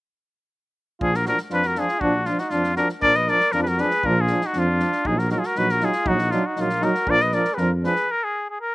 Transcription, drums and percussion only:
1.01 kick medium
1.14 snare soft
1.26 snare soft
1.38 snare soft
1.50 snare soft
1.63 snare soft
1.75 snare soft
1.88 snare soft
2.01 kick medium
2.25 snare soft
2.38 snare soft
2.50 snare soft
2.64 snare soft
2.76 snare soft
2.89 snare soft
3.02 kick medium
3.14 snare soft
3.28 snare soft
3.40 snare soft
3.52 snare soft
3.66 snare soft
3.78 snare soft
3.91 snare soft
4.03 kick medium
4.27 snare soft
4.41 snare soft
4.53 snare soft
4.80 snare soft
4.92 snare soft
5.05 kick medium
5.19 snare soft
5.30 snare soft
5.43 snare soft
5.55 snare soft
5.69 snare soft
5.80 snare soft
5.93 snare soft
6.06 kick medium
6.18 snare soft
6.31 snare soft
6.56 snare soft
6.69 snare soft
6.82 snare soft
6.95 snare soft
7.07 kick medium
7.20 snare soft
7.32 snare soft
7.45 snare soft
7.57 snare soft
7.84 snare soft
7.96 snare soft

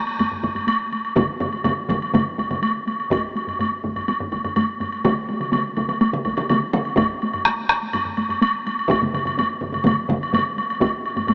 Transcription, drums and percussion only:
0.07 taiko high soft
0.07 high woodblock soft
0.19 taiko low-mid medium
0.19 taiko high medium
0.19 high woodblock medium
0.32 taiko low-mid medium
0.32 taiko high soft
0.43 taiko medium
0.43 taiko low-mid medium
0.43 taiko high medium
0.43 high woodblock soft
0.55 taiko low-mid medium
0.55 high woodblock soft
0.68 taiko high medium
0.68 high woodblock medium
0.80 taiko high soft
0.93 taiko high soft
0.93 high woodblock soft
1.05 taiko high soft
1.05 high woodblock soft
1.16 taiko loud
1.16 taiko low-mid loud
1.16 taiko mid loud
1.16 taiko high medium
1.16 high woodblock soft
1.40 taiko low-mid medium
1.40 taiko mid medium
1.40 taiko high medium
1.40 high woodblock soft
1.53 taiko high soft
1.53 high woodblock soft
1.64 taiko low-mid loud
1.64 taiko mid medium
1.64 taiko high medium
1.64 high woodblock soft
1.78 taiko high soft
1.89 taiko medium
1.89 taiko low-mid medium
1.89 taiko mid loud
1.89 taiko high soft
1.89 high woodblock soft
2.02 taiko high soft
2.02 high woodblock soft
2.14 taiko low-mid loud
2.14 taiko mid medium
2.14 taiko high medium
2.14 high woodblock soft
2.26 taiko high soft
2.38 taiko medium
2.38 taiko high soft
2.38 high woodblock soft
2.51 taiko low-mid medium
2.51 taiko mid medium
2.51 taiko high soft
2.51 high woodblock soft
2.63 taiko high medium
2.63 high woodblock medium
2.87 taiko high soft
2.87 high woodblock soft
2.99 taiko high soft
2.99 high woodblock soft
3.10 taiko loud
3.10 taiko low-mid loud
3.10 taiko high medium
3.10 high woodblock soft
3.35 taiko high soft
3.35 high woodblock soft
3.47 taiko low-mid medium
3.47 taiko high soft
3.47 high woodblock soft
3.59 taiko low-mid medium
3.59 taiko high medium
3.59 high woodblock soft
3.72 taiko high soft
3.84 taiko medium
3.84 taiko low-mid medium
3.84 taiko high soft
3.96 taiko low-mid medium
3.96 taiko high soft
3.96 high woodblock soft
4.08 taiko high medium
4.08 high woodblock soft
4.20 taiko low-mid loud
4.20 taiko high soft
4.32 taiko medium
4.32 taiko high medium
4.32 high woodblock soft
4.44 taiko low-mid medium
4.44 taiko high soft
4.44 high woodblock soft
4.56 taiko low-mid loud
4.56 taiko high medium
4.56 high woodblock medium
4.69 taiko high soft
4.80 taiko low-mid medium
4.80 taiko high soft
4.80 high woodblock soft
4.92 taiko high soft
4.92 high woodblock soft
5.04 taiko loud
5.04 taiko mid medium
5.04 taiko high medium
5.04 high woodblock medium
5.29 taiko high medium
5.29 high woodblock soft
5.40 taiko mid medium
5.40 taiko high soft
5.40 high woodblock soft
5.53 taiko mid medium
5.53 taiko high medium
5.53 high woodblock soft
5.65 taiko high soft
5.77 taiko medium
5.77 taiko mid medium
5.77 taiko high medium
5.77 high woodblock soft
5.89 taiko mid medium
5.89 taiko high soft
5.89 high woodblock soft
6.01 taiko high medium
6.01 high woodblock soft
6.13 taiko mid loud
6.25 taiko medium
6.25 taiko high medium
6.25 high woodblock soft
6.37 taiko mid loud
6.37 high woodblock soft
6.49 taiko mid loud
6.49 taiko high medium
6.49 high woodblock medium
6.62 taiko high soft
6.73 taiko mid loud
6.73 taiko high medium
6.73 high woodblock soft
6.85 taiko high soft
6.85 high woodblock soft
6.97 taiko loud
6.97 taiko low-mid loud
6.97 taiko high medium
6.97 high woodblock medium
7.22 taiko high medium
7.22 high woodblock soft
7.33 taiko low-mid medium
7.33 taiko high soft
7.33 high woodblock soft
7.45 taiko rim medium
7.45 taiko high medium
7.45 high woodblock soft
7.59 taiko high soft
7.69 taiko rim medium
7.69 taiko medium
7.69 high woodblock soft
7.82 taiko high soft
7.93 taiko low-mid medium
7.93 taiko high medium
7.93 high woodblock medium
8.05 taiko low-mid medium
8.05 taiko high soft
8.17 taiko low-mid medium
8.17 taiko high medium
8.17 high woodblock soft
8.29 taiko low-mid medium
8.29 taiko high soft
8.29 high woodblock soft
8.42 taiko high medium
8.42 high woodblock medium
8.55 taiko high soft
8.66 taiko high medium
8.66 high woodblock soft
8.79 taiko high soft
8.79 high woodblock soft
8.89 taiko loud
8.89 taiko low-mid medium
8.89 taiko mid medium
8.89 taiko high medium
8.89 high woodblock medium
9.01 taiko low-mid medium
9.01 taiko mid medium
9.01 taiko high medium
9.13 taiko low-mid medium
9.13 taiko mid medium
9.13 taiko high medium
9.13 high woodblock soft
9.25 taiko low-mid medium
9.25 taiko mid medium
9.25 taiko high soft
9.25 high woodblock medium
9.37 taiko low-mid medium
9.37 taiko mid medium
9.37 taiko high medium
9.37 high woodblock medium
9.51 taiko high soft
9.61 taiko medium
9.61 taiko low-mid medium
9.61 taiko mid medium
9.72 taiko low-mid medium
9.72 taiko mid medium
9.72 taiko high soft
9.72 high woodblock soft
9.85 taiko low-mid loud
9.85 taiko mid loud
9.85 taiko high medium
9.85 high woodblock medium
10.09 taiko medium
10.09 taiko low-mid medium
10.09 taiko mid loud
10.09 taiko high medium
10.21 taiko high soft
10.21 high woodblock soft
10.33 taiko low-mid medium
10.33 taiko mid medium
10.33 taiko high medium
10.33 high woodblock medium
10.46 taiko high soft
10.58 taiko high soft
10.58 high woodblock soft
10.69 taiko high soft
10.69 high woodblock soft
10.80 taiko loud
10.80 taiko low-mid loud
10.80 taiko high medium
10.80 high woodblock medium
11.06 high woodblock soft
11.16 taiko low-mid medium
11.16 taiko high medium
11.16 high woodblock soft
11.27 taiko medium
11.27 taiko low-mid medium
11.27 taiko high medium
11.27 high woodblock soft

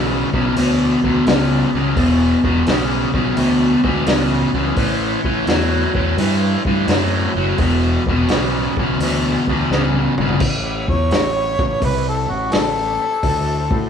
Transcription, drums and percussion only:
0.34 kick medium
0.56 open hi-hat medium
1.04 kick medium
1.27 snare loud
1.27 open hi-hat medium
1.96 kick loud
1.96 open hi-hat medium
2.44 kick medium
2.66 snare loud
2.66 open hi-hat soft
3.14 kick medium
3.37 open hi-hat medium
3.84 kick medium
4.07 snare loud
4.07 open hi-hat medium
4.77 kick loud
4.77 open hi-hat medium
5.24 kick medium
5.47 snare loud
5.47 open hi-hat soft
5.95 kick medium
6.18 open hi-hat medium
6.65 kick medium
6.88 snare loud
6.88 open hi-hat medium
7.58 kick loud
7.58 open hi-hat medium
8.06 kick medium
8.29 snare loud
8.29 open hi-hat medium
8.77 kick medium
9.00 open hi-hat medium
9.47 kick medium
9.72 snare medium
9.94 high tom medium
10.18 mid tom medium
10.29 floor tom medium
10.40 kick loud
10.40 crash loud
10.88 kick loud
11.11 snare loud
11.11 open hi-hat soft
11.59 kick loud
11.82 kick loud
11.82 open hi-hat medium
12.52 snare loud
12.52 open hi-hat medium
13.23 kick loud
13.23 open hi-hat medium
13.71 kick loud

